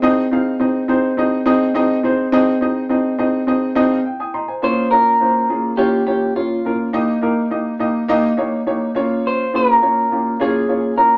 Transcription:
0.02 C4 D#4 G#4 D#5
0.31 C4 D#4 G#4 F5
0.60 C4 D#4 G#4 D#5
0.88 C4 D#4 G#4 C5
1.17 C4 D#4 G#4 D#5
1.46 C4 D#4 G#4 D#5
1.74 C4 D#4 G#4 D#5
2.03 C4 D#4 G#4 C5
2.32 C4 D#4 G#4 D#5
2.61 C4 D#4 G#4 D#5
2.89 C4 D#4 G#4 D#5
3.18 C4 D#4 G#4 D#5
3.47 C4 D#4 G#4 D#5
3.75 C4 D#4 G#4 D#5
3.91 F5
4.05 G5
4.20 G5 G#5 D#6
4.34 D#5 A#5 C6
4.48 C5 G#5
4.62 A#3 C#4 F4 C5 C#5
4.91 A#3 C#4 F4 A#4 C#5
5.20 A#3 C#4 F4 C5
5.49 A#3 C#4 F4 G#4
5.77 A#3 C#4 F4 G4 C#5
6.07 A#3 C#4 F4 G4 C#5
6.36 A#3 C#4 F4 C#5
6.65 A#3 C#4 F4 A#4
6.93 A#3 D#4 G4 D#5
7.21 A#3 D#4 G4 A#4
7.50 A#3 D#4 G4 D#5
7.79 A#3 D#4 G4 D#5
8.08 A#3 D#4 G4 D#5
8.37 A#3 D#4 G4 C#5
8.67 A#3 D#4 G4 C#5
8.95 A#3 C#4 F4 C#5
9.27 C5
9.53 A#3 C#4 F4 G#4 A#4
9.81 A#3 C#4 F4 C#5
10.11 A#3 C#4 F4 G4
10.40 A#3 C#4 F4 G#4 C#5
10.68 A#3 C#4 F4 C#5
10.97 A#3 C#4 F4 A#4 C#5

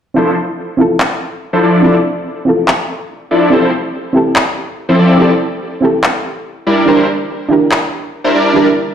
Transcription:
0.14 F3 C4 D4 E4 F4 A4 C5
0.77 C4 E4 F4 A4
1.00 clap
1.53 F3 D4 E4 A4 C5
1.63 F3 D4 E4 A4 D5
1.82 F3 C4 D4 E4 F4 A4 D5
1.86 A4
2.45 C4 E4 F4 A4
2.68 clap
3.31 F3 D4 E4 A4 D5
3.50 F3 C4 E4 G4 A4 C5
3.54 A4
4.13 C4 E4 G4 A4
4.36 clap
4.89 F3 C4 E4 A4 C5
4.99 F3 C4 E4 A4 D5
5.18 F3 C4 E4 G4 A4 D5
5.22 A4
5.81 C4 E4 G4 A4
6.04 clap
6.67 G3 D4 E4 A#4 D5
6.86 G3 D4 E4 G4 A#4 C5
6.90 A#4
7.49 D4 E4 G4 A#4
7.71 clap
8.24 G3 D4 E4 A#4 C5
8.34 G3 D4 E4 A#4 D5
8.53 G3 D4 E4 G4 A#4 D5
8.57 A#4

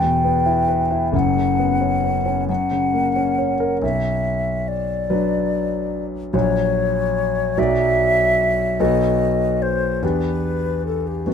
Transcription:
Already playing: E2 G5
0.02 B2
0.24 B3
0.46 E4
0.68 B4
0.91 E4
1.12 F#1 F#2 F#5
1.37 C#3
1.59 B3
1.81 C#4
2.04 B4
2.26 C#4
2.48 F#2 F#5
2.71 C#3
2.94 A#3
3.16 C#4
3.38 C#5
3.60 A#4
3.81 B1 E5
4.68 D5
5.10 F#3 D4 B4
6.33 A#1 F#3 F#4 C#5
7.57 B1 F#3 F#4 D5 E5
8.80 B1 B3 F#4 A4 D#5
9.62 C5
10.02 E2 B3 D4 G4 B4
10.86 A4
11.07 G4
11.26 F#2 B3 D4 F#4

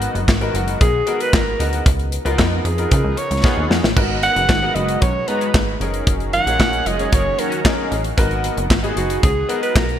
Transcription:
Already playing: D#3 F#3 G#3 B3 D#4 F#4 A#4
0.02 closed hi-hat
0.15 F#1, closed hi-hat
0.28 G#1, kick, snare, clap
0.41 B3 D#4 F#4 A#4, closed hi-hat
0.54 F#1 F#4, closed hi-hat
0.68 closed hi-hat
0.80 B1 G#4, kick, closed hi-hat
1.07 B3 D#4 F#4 A#4, closed hi-hat
1.20 B4, closed hi-hat
1.33 G#1 A#4, kick, snare, clap
1.59 D2 B3 D#4 F#4 A#4, closed hi-hat
1.73 closed hi-hat
1.86 C#2 C#3 F3 D#4 A#4, kick, closed hi-hat
1.99 closed hi-hat
2.12 closed hi-hat
2.25 C#2 B3 D#4 F4 A#4, closed hi-hat
2.39 F2, kick, snare, clap
2.65 F2 G#4, closed hi-hat
2.78 B3 D#4 F4 A#4, closed hi-hat
2.91 C#3, kick, closed hi-hat
3.04 C#2
3.17 C#5, closed hi-hat
3.31 C#2, closed hi-hat
3.44 B3 D#4 F4 G#4, kick, snare
3.57 D#2
3.70 F2, snare
3.83 A1, snare
3.96 G#1 D#3 F#3 G#3 B3 D#4 F#4 A#4, kick, crash
4.22 C#4 A#4 C#5 F#5, closed hi-hat
4.36 F#1 G#3 F#4 B4, closed hi-hat
4.48 G#1 D#3 B3 G#4, kick, snare, clap
4.62 B3 D#4 F#4 A#4
4.75 F#1 G#3 F#4 B4 D#5, closed hi-hat
4.89 closed hi-hat
5.01 B1 C#4 A#4 C#5, kick, closed hi-hat
5.28 G#3 B3 D#4 F#4 B4 A#5, closed hi-hat
5.41 closed hi-hat
5.54 G#1, kick, snare, clap
5.81 F#1 A#3 C#4 D#4 G#4 A#4, closed hi-hat
5.94 closed hi-hat
6.07 F#1, kick, closed hi-hat
6.20 closed hi-hat
6.33 F#3 D#4 A#4 F#5, closed hi-hat
6.46 A#1 G#3 C#4 D#4 F4 G#4 A#4, closed hi-hat
6.60 A#1 D#3 C#4 F#4, kick, snare, clap
6.73 closed hi-hat
6.86 F#1 G#3 F4 G#4 D#5, closed hi-hat
6.99 C#4 D#4 G#4 C#5, closed hi-hat
7.12 F#1 F#3 D#4 A#4 C#5, kick, closed hi-hat
7.39 D#3 C#4 F#4 A#4, closed hi-hat
7.52 closed hi-hat
7.64 C#4 D#4 G#4 A#4, kick, snare, clap
7.91 A1, closed hi-hat
8.04 closed hi-hat
8.17 G#1 D#3 G#3 B3 D#4 F#4 A#4, kick, closed hi-hat
8.31 closed hi-hat
8.44 closed hi-hat
8.57 F#1, closed hi-hat
8.70 G#1, kick, snare, clap
8.83 B3 D#4 F#4 G#4, closed hi-hat
8.97 F#1 F#4, closed hi-hat
9.10 closed hi-hat
9.23 C#2 G#4, kick, closed hi-hat
9.48 B3 D#4 F#4 A#4, closed hi-hat
9.63 B4, closed hi-hat
9.76 B1 A#4, kick, snare, clap
9.89 closed hi-hat

